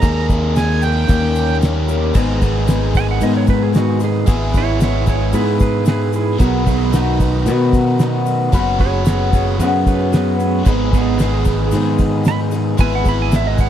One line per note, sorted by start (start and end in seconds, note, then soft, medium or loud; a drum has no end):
0.00 1.05 D#2 loud
0.00 0.29 D#3 medium
0.00 1.05 G#3 medium
0.00 0.29 A#3 medium
0.00 1.06 D#4 medium
0.00 0.29 D#4 medium
0.00 0.27 G#4 medium
0.00 2.13 A#4 medium
0.00 2.11 D#5 loud
0.00 0.27 A#5 medium
0.00 kick loud
0.00 crash medium
0.00 shaker medium
0.28 0.55 A#3 soft
0.28 0.56 D#4 soft
0.28 0.55 G#4 medium
0.28 kick medium
0.28 crash medium
0.28 shaker medium
0.55 0.82 D#3 medium
0.55 0.83 A#3 medium
0.55 0.83 D#4 medium
0.55 0.82 G#4 medium
0.55 0.83 G#5 loud
0.55 snare loud
0.55 crash medium
0.55 shaker loud
0.82 1.10 D#4 soft
0.82 1.09 G#4 soft
0.82 1.58 G5 loud
0.82 crash medium
0.82 shaker medium
0.86 1.08 A#3 soft
1.09 2.11 D#2 medium
1.09 1.60 D#3 medium
1.09 2.14 G3 medium
1.09 1.61 A#3 medium
1.09 2.14 C#4 medium
1.09 1.63 C#4 medium
1.09 1.63 G4 loud
1.09 kick loud
1.09 crash medium
1.09 shaker medium
1.35 crash medium
1.35 shaker medium
1.50 snare soft
1.61 1.88 D#3 medium
1.61 1.89 A#3 medium
1.61 1.89 C#4 medium
1.61 1.87 G4 medium
1.61 snare loud
1.61 crash medium
1.61 shaker medium
1.88 2.16 A#3 soft
1.88 2.16 C#4 medium
1.88 2.15 G4 medium
1.88 crash medium
1.88 shaker medium
2.13 3.23 G#1 loud
2.13 2.42 G#2 medium
2.13 2.42 D#3 medium
2.13 2.42 G#3 medium
2.13 2.42 B3 loud
2.13 4.25 D#4 medium
2.13 2.41 D#4 medium
2.13 6.36 G#4 medium
2.13 6.36 B4 medium
2.13 6.36 G#5 medium
2.13 kick loud
2.13 crash loud
2.13 shaker loud
2.17 2.40 G#4 loud
2.41 2.66 G#3 medium
2.41 2.68 B3 medium
2.41 2.69 D#4 medium
2.41 2.68 G#4 medium
2.41 kick medium
2.41 open hi-hat medium
2.41 shaker medium
2.67 2.94 G#3 medium
2.67 2.95 B3 medium
2.67 2.95 D#4 medium
2.67 2.94 G#4 medium
2.67 snare loud
2.67 open hi-hat medium
2.67 shaker loud
2.94 3.21 G#3 soft
2.94 3.21 B3 soft
2.94 3.21 D#4 medium
2.94 3.21 G#4 medium
2.94 3.09 G#5 loud
2.94 kick loud
2.94 open hi-hat medium
2.94 shaker medium
3.11 3.23 F#5 medium
3.21 3.74 G#2 medium
3.21 4.24 G#2 loud
3.21 3.75 D#3 medium
3.21 3.72 G#3 medium
3.21 3.74 B3 loud
3.21 3.74 D#4 loud
3.21 3.75 G#4 medium
3.21 3.35 D#5 medium
3.21 open hi-hat medium
3.21 shaker medium
3.37 3.49 C#5 loud
3.47 3.62 B4 loud
3.47 kick medium
3.47 open hi-hat medium
3.47 shaker medium
3.63 3.75 G#4 medium
3.73 4.00 G#3 medium
3.73 4.01 B3 medium
3.73 4.00 D#4 medium
3.73 4.01 F#4 medium
3.73 3.99 G#4 medium
3.73 snare loud
3.73 open hi-hat medium
3.73 shaker loud
4.00 4.25 G#3 soft
4.00 4.26 B3 soft
4.00 4.27 D#4 medium
4.00 4.27 G#4 medium
4.00 open hi-hat medium
4.00 shaker medium
4.04 4.29 G#4 loud
4.26 5.35 G#1 loud
4.26 4.54 G#3 medium
4.26 4.54 B3 medium
4.26 6.38 E4 medium
4.26 4.53 E4 medium
4.26 4.52 G#4 medium
4.26 kick loud
4.26 open hi-hat medium
4.26 shaker loud
4.53 4.80 B3 soft
4.53 4.81 E4 medium
4.53 4.80 G#4 medium
4.53 kick medium
4.53 open hi-hat medium
4.53 shaker medium
4.57 4.82 E4 medium
4.57 4.82 C#5 medium
4.80 5.07 G#3 medium
4.80 5.08 B3 medium
4.80 5.07 E4 medium
4.80 5.05 G#4 medium
4.80 5.08 C#5 medium
4.80 snare loud
4.80 open hi-hat medium
4.80 shaker medium
5.06 5.32 B3 soft
5.06 5.33 E4 medium
5.06 5.34 G#4 soft
5.06 5.34 C#5 medium
5.06 kick medium
5.06 open hi-hat medium
5.06 shaker medium
5.33 6.36 G#2 loud
5.33 5.85 G#3 medium
5.33 5.86 B3 medium
5.33 5.86 E4 loud
5.33 5.59 G#4 medium
5.33 5.87 G#4 medium
5.33 5.60 B4 medium
5.33 open hi-hat medium
5.33 shaker loud
5.60 5.86 G#4 medium
5.60 5.87 B4 medium
5.60 kick medium
5.60 open hi-hat medium
5.60 shaker medium
5.86 6.39 G#3 medium
5.86 6.39 B3 medium
5.86 6.40 E4 medium
5.86 6.12 G#4 medium
5.86 6.40 G#4 medium
5.86 6.14 B4 loud
5.86 snare loud
5.86 open hi-hat medium
5.86 shaker medium
6.13 6.40 E4 medium
6.13 6.40 G#4 medium
6.13 open hi-hat medium
6.13 shaker medium
6.38 7.47 B1 loud
6.38 6.66 B2 medium
6.38 6.67 D#3 medium
6.38 8.51 F#3 loud
6.38 6.67 B3 medium
6.38 6.65 B3 medium
6.38 6.67 D#4 medium
6.38 6.64 F#4 medium
6.38 10.62 F#4 medium
6.38 6.67 G#4 medium
6.38 13.69 B4 medium
6.38 8.55 B4 loud
6.38 8.51 D#5 medium
6.38 10.62 B5 medium
6.38 kick loud
6.38 open hi-hat medium
6.38 shaker loud
6.66 6.92 B3 medium
6.66 6.92 B3 soft
6.66 6.93 D#4 medium
6.66 6.93 F#4 medium
6.66 6.93 G#4 medium
6.66 kick medium
6.66 open hi-hat medium
6.66 shaker medium
6.92 7.19 D#3 medium
6.92 7.20 B3 medium
6.92 7.20 D#4 medium
6.92 7.46 D#4 loud
6.92 7.18 F#4 medium
6.92 snare loud
6.92 open hi-hat medium
6.92 shaker loud
7.19 7.46 B3 soft
7.19 7.46 D#4 soft
7.19 7.46 F#4 soft
7.19 kick medium
7.19 open hi-hat medium
7.19 shaker medium
7.46 8.49 B2 loud
7.46 8.00 B2 medium
7.46 7.97 D#3 medium
7.46 7.99 B3 loud
7.46 7.99 D#4 medium
7.46 8.00 F#4 medium
7.46 open hi-hat medium
7.46 shaker loud
7.73 kick medium
7.73 open hi-hat medium
7.73 shaker medium
7.98 8.52 D#3 medium
7.98 8.53 B3 medium
7.98 8.54 D#4 medium
7.98 8.53 F#4 medium
7.98 snare loud
7.98 open hi-hat medium
7.98 shaker medium
8.26 open hi-hat medium
8.26 shaker medium
8.52 9.61 F#1 loud
8.52 8.79 F#2 medium
8.52 8.80 C#3 medium
8.52 8.80 F#3 medium
8.52 8.80 B3 medium
8.52 8.79 C#4 loud
8.52 8.78 F#4 loud
8.52 10.67 B4 loud
8.52 10.64 C#5 medium
8.52 kick loud
8.52 open hi-hat medium
8.52 shaker loud
8.79 9.05 F#3 soft
8.79 9.07 B3 soft
8.79 9.07 C#4 medium
8.79 9.06 F#4 medium
8.79 9.05 G#4 medium
8.79 9.06 C#5 loud
8.79 kick medium
8.79 open hi-hat medium
9.06 9.60 F#3 medium
9.06 9.61 B3 medium
9.06 9.61 C#4 medium
9.06 9.61 F#4 medium
9.06 9.31 G#4 medium
9.06 9.33 C#5 loud
9.06 snare loud
9.06 open hi-hat medium
9.06 shaker loud
9.33 9.58 G#4 medium
9.33 9.59 C#5 medium
9.33 kick loud
9.33 open hi-hat medium
9.33 shaker medium
9.59 10.62 F#2 loud
9.59 10.13 F#2 medium
9.59 10.13 C#3 medium
9.59 10.12 F#3 medium
9.59 10.14 B3 medium
9.59 10.14 C#4 medium
9.59 10.14 F#4 loud
9.59 9.85 G#4 medium
9.59 9.86 B4 medium
9.59 open hi-hat medium
9.59 shaker loud
9.86 10.11 G#4 medium
9.86 10.12 B4 medium
9.86 kick medium
9.86 open hi-hat medium
9.86 shaker medium
10.12 10.66 F#3 medium
10.12 10.68 B3 medium
10.12 10.67 C#4 medium
10.12 10.37 G#4 loud
10.12 10.39 B4 medium
10.12 snare loud
10.12 open hi-hat medium
10.12 shaker medium
10.17 10.68 F#4 medium
10.39 10.64 B3 medium
10.39 10.65 G#4 medium
10.39 open hi-hat medium
10.39 shaker medium
10.66 11.74 G#1 loud
10.66 10.93 G#2 medium
10.66 10.93 D#3 medium
10.66 10.94 G#3 medium
10.66 10.91 B3 medium
10.66 10.94 B3 medium
10.66 10.92 D#4 medium
10.66 10.92 G#4 medium
10.66 13.69 G#4 medium
10.66 10.91 G#4 medium
10.66 12.79 B4 loud
10.66 12.77 D#5 medium
10.66 13.69 B5 medium
10.66 kick loud
10.66 crash loud
10.66 shaker medium
10.92 11.18 G#3 medium
10.92 11.18 B3 medium
10.92 11.20 B3 medium
10.92 11.20 D#4 medium
10.92 11.19 G#4 medium
10.92 kick loud
10.92 open hi-hat medium
10.92 shaker medium
11.19 11.74 G#3 medium
11.19 11.74 B3 medium
11.19 11.74 D#4 medium
11.19 11.72 G#4 loud
11.19 11.75 G#4 medium
11.19 snare medium
11.19 open hi-hat medium
11.19 shaker loud
11.45 kick medium
11.45 open hi-hat medium
11.45 shaker medium
11.71 12.75 G#2 loud
11.71 12.26 G#2 medium
11.71 12.26 D#3 medium
11.71 12.25 G#3 medium
11.71 12.26 B3 loud
11.71 12.27 D#4 medium
11.71 12.27 G#4 medium
11.71 open hi-hat medium
11.71 shaker loud
11.98 kick medium
11.98 open hi-hat medium
11.98 shaker medium
12.25 12.52 G#3 medium
12.25 12.53 B3 medium
12.25 12.52 D#4 medium
12.25 12.40 B5 loud
12.25 snare loud
12.25 open hi-hat medium
12.25 shaker medium
12.29 12.51 G#4 medium
12.51 12.77 G#3 medium
12.51 12.78 B3 medium
12.51 12.79 D#4 medium
12.51 12.79 G#4 medium
12.51 open hi-hat medium
12.51 shaker medium
12.78 13.69 G#1 loud
12.78 13.05 G#3 medium
12.78 13.05 B3 medium
12.78 13.05 E4 medium
12.78 13.03 G#4 medium
12.78 13.69 B4 loud
12.78 13.69 E5 medium
12.78 12.92 G#5 loud
12.78 kick loud
12.78 open hi-hat medium
12.78 shaker loud
12.95 13.06 F#5 medium
13.04 13.31 B3 soft
13.04 13.32 E4 medium
13.04 13.31 G#4 medium
13.04 kick loud
13.04 open hi-hat medium
13.04 shaker medium
13.09 13.20 B5 loud
13.22 13.33 G#5 medium
13.31 13.69 G#3 medium
13.31 13.69 B3 medium
13.31 13.69 E4 medium
13.31 13.69 G#4 medium
13.31 snare loud
13.31 open hi-hat medium
13.31 shaker loud
13.36 13.47 E5 medium
13.47 13.59 D#5 loud
13.58 13.69 F#5 loud
13.58 kick medium
13.58 open hi-hat medium
13.58 shaker medium